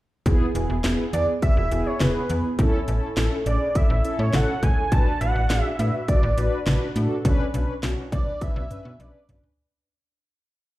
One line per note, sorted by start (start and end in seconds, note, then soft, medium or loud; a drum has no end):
0.26 0.38 E1 loud
0.26 0.46 B3 loud
0.26 0.46 E4 loud
0.26 0.46 G#4 loud
0.26 kick loud
0.26 closed hi-hat medium
0.55 0.67 E1 loud
0.55 0.75 B3 medium
0.55 0.75 E4 medium
0.55 0.75 G#4 medium
0.55 closed hi-hat medium
0.70 0.82 E1 loud
0.84 0.96 E1 loud
0.84 1.05 B3 medium
0.84 1.04 E4 medium
0.84 1.05 G#4 loud
0.84 snare loud
0.84 closed hi-hat medium
1.13 1.25 E2 loud
1.13 1.34 B3 medium
1.13 1.34 E4 medium
1.13 1.34 G#4 medium
1.13 1.26 D5 medium
1.13 closed hi-hat medium
1.42 1.63 B3 medium
1.42 1.63 E4 medium
1.42 1.63 G#4 medium
1.42 1.88 E5 loud
1.42 kick loud
1.42 closed hi-hat medium
1.57 1.69 E1 medium
1.71 1.84 E1 loud
1.71 1.92 B3 loud
1.71 1.92 E4 medium
1.71 1.92 G#4 loud
1.71 closed hi-hat medium
1.86 2.02 C#5 medium
2.00 2.13 E1 loud
2.00 2.21 B3 loud
2.00 2.21 E4 medium
2.00 2.21 G#4 loud
2.00 2.44 B4 medium
2.00 snare loud
2.00 closed hi-hat medium
2.00 mid tom medium
2.30 2.42 E2 medium
2.30 2.50 B3 medium
2.30 2.50 E4 medium
2.30 2.50 G#4 medium
2.30 closed hi-hat medium
2.59 2.71 A1 loud
2.59 2.79 C#4 loud
2.59 2.79 E4 loud
2.59 2.79 A4 loud
2.59 kick loud
2.59 closed hi-hat medium
2.88 3.00 A1 medium
2.88 3.08 C#4 medium
2.88 3.08 E4 medium
2.88 3.08 A4 loud
2.88 closed hi-hat medium
3.17 3.29 A1 loud
3.17 3.38 C#4 medium
3.17 3.38 E4 medium
3.17 3.38 A4 loud
3.17 snare loud
3.17 closed hi-hat medium
3.46 3.58 A1 medium
3.46 3.67 C#4 medium
3.46 3.67 E4 medium
3.46 3.67 G#4 medium
3.46 3.77 D5 medium
3.46 closed hi-hat medium
3.75 3.96 C#4 medium
3.75 3.96 E4 medium
3.75 3.96 A4 medium
3.75 4.19 E5 medium
3.75 kick loud
3.75 closed hi-hat medium
3.90 4.02 A1 medium
4.04 4.25 C#4 loud
4.04 4.25 E4 medium
4.04 4.25 A4 loud
4.04 closed hi-hat medium
4.19 4.31 A2 medium
4.19 4.35 C#5 medium
4.33 4.46 A1 loud
4.33 4.54 C#4 loud
4.33 4.54 E4 medium
4.33 4.54 A4 loud
4.33 4.64 F#5 loud
4.33 snare loud
4.33 closed hi-hat medium
4.33 mid tom loud
4.63 4.75 A1 loud
4.63 4.83 C#4 medium
4.63 4.83 E4 medium
4.63 4.83 A4 medium
4.63 4.93 G#5 loud
4.63 kick medium
4.63 closed hi-hat medium
4.92 5.04 A1 loud
4.92 5.12 D4 loud
4.92 5.12 F#4 medium
4.92 5.12 B4 loud
4.92 5.20 A5 loud
4.92 kick loud
4.92 closed hi-hat medium
5.21 5.33 A1 loud
5.21 5.41 D4 medium
5.21 5.41 F#4 medium
5.21 5.41 B4 medium
5.21 5.63 F#5 loud
5.21 closed hi-hat medium
5.36 5.48 A1 medium
5.50 5.62 A1 medium
5.50 5.71 D4 medium
5.50 5.71 F#4 medium
5.50 5.70 G#4 medium
5.50 snare loud
5.50 closed hi-hat medium
5.63 5.79 E5 loud
5.79 5.91 A2 loud
5.79 6.00 D4 medium
5.79 6.00 F#4 medium
5.79 6.00 B4 medium
5.79 6.08 E5 loud
5.79 closed hi-hat medium
6.08 6.29 D4 medium
6.08 6.29 F#4 medium
6.08 6.29 B4 medium
6.08 6.63 D5 medium
6.08 kick loud
6.08 closed hi-hat medium
6.23 6.35 A1 loud
6.38 6.50 A1 loud
6.38 6.58 D4 loud
6.38 6.58 F#4 medium
6.38 6.58 B4 loud
6.38 closed hi-hat medium
6.67 6.79 A1 loud
6.67 6.87 D4 medium
6.67 6.87 F#4 medium
6.67 6.87 B4 loud
6.67 snare loud
6.67 closed hi-hat medium
6.67 mid tom medium
6.96 7.08 A2 loud
6.96 7.16 D4 medium
6.96 7.16 F#4 medium
6.96 7.16 A4 loud
6.96 closed hi-hat medium
7.25 7.37 B1 loud
7.25 7.45 C#4 loud
7.25 7.45 D4 loud
7.25 7.45 B4 loud
7.25 kick loud
7.25 closed hi-hat medium
7.54 7.66 B1 loud
7.54 7.74 C#4 medium
7.54 7.74 D4 medium
7.54 7.74 B4 loud
7.54 closed hi-hat medium
7.83 7.95 B1 loud
7.83 8.03 C#4 medium
7.83 8.04 D4 medium
7.83 8.04 F#4 loud
7.83 snare loud
7.83 closed hi-hat medium
8.12 8.24 B1 loud
8.12 8.33 C#4 medium
8.12 8.33 D4 medium
8.12 8.33 B4 medium
8.12 8.43 D5 loud
8.12 kick loud
8.12 closed hi-hat medium
8.41 8.62 C#4 medium
8.41 8.62 D4 medium
8.41 8.62 B4 medium
8.41 9.01 E5 loud
8.41 kick loud
8.41 closed hi-hat medium
8.56 8.68 B1 loud
8.70 8.91 C#4 loud
8.70 8.91 D4 medium
8.70 8.91 B4 loud
8.70 closed hi-hat medium
8.70 mid tom medium
8.85 8.97 B2 medium
9.00 9.12 B1 loud
9.00 9.20 C#4 medium
9.00 9.20 D4 medium
9.00 9.20 B4 loud
9.00 9.44 D5 medium
9.00 closed hi-hat medium
9.00 high tom medium
9.29 9.41 B1 medium
9.29 9.49 C#4 medium
9.29 9.49 D4 medium
9.29 9.49 B4 medium
9.29 closed hi-hat medium
9.29 mid tom medium
9.44 floor tom medium